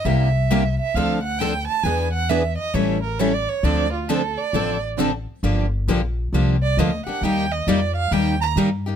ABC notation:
X:1
M:4/4
L:1/8
Q:"Swing" 1/4=134
K:Dm
V:1 name="Violin"
e3 e f ^f g a | ^g ^f e _e ^c B (3c d c | d F A d2 z3 | [K:Gm] z4 z d e ^f |
g e d f g b z2 |]
V:2 name="Steel-string acoustic guitar"
[C,G,B,EG] z [C,G,B,EG] z [D,F,CDA] z [D,F,CDA] z | [E,=B,D^G] z [E,B,DG] z [E,=G,^CEA] z [E,G,CEA] z | [D,F,CDA] z [D,F,CDA] z [D,F,CDA] z [D,F,CDA] z | [K:Gm] [D,F,B,DG] z [D,F,B,DG] z [D,F,B,DG] z [D,F,B,DG] [B,DG] |
[E,G,B,EG] z [E,G,B,EG] z [E,G,B,EG] z [E,G,B,EG] [B,EG] |]
V:3 name="Steel-string acoustic guitar"
[C,G,B,EG] z [C,G,B,EG] z [D,F,CDA] z [D,F,CDA] z | [E,=B,D^G=B] z [E,B,DGB] z [E,=G,^CEA] z [E,G,CEA] z | [D,F,CDA] z [D,F,CDA] z [D,F,CDA] z [D,F,CDA] z | [K:Gm] [D,F,B,DG] z [D,F,B,DG] z [D,F,B,DG] z [D,F,B,DG] z |
[E,G,B,EG] z [E,G,B,EG] z [E,G,B,EG] z [E,G,B,EG] z |]
V:4 name="Upright bass" clef=bass
C,,4 D,,4 | E,,4 A,,,4 | D,,4 A,,,4 | [K:Gm] G,,,2 B,,,2 C,,2 D,, z |
E,,2 F,,2 E,,2 G,,2 |]